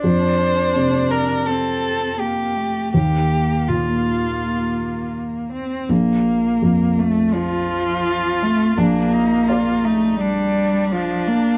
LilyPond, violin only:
\new Staff \with { instrumentName = "Violin" } { \time 4/4 \key bes \major \tempo 4 = 83 c''4. bes'8 a'4 g'4 | g'4 f'2 r4 | r2 f'2 | d'8 ees'8 f'8 ees'8 d'4 d'4 | }